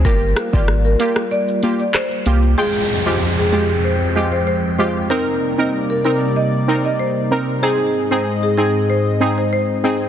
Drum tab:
HH |--x---x---x---x-|----------------|----------------|----------------|
SH |xxxxxxxxxxxxxxxx|----------------|----------------|----------------|
CP |------------x---|----------------|----------------|----------------|
SD |--r-r--r----r---|----------------|----------------|----------------|
BD |o--o------------|----------------|----------------|----------------|